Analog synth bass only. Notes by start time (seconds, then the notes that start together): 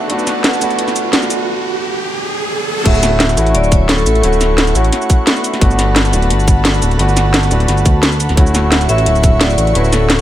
0.10 G1
0.61 D1
0.79 G1
1.30 D1
2.86 D1
3.37 A1
3.55 D1
4.06 A1
4.24 D1
4.75 A1
5.61 G1
6.13 D1
6.30 G1
6.82 D1
6.99 G1
7.51 D1
7.68 G1
7.86 D2
8.29 D1
8.37 D1
8.89 A1
9.06 D1
9.58 A1
9.75 D1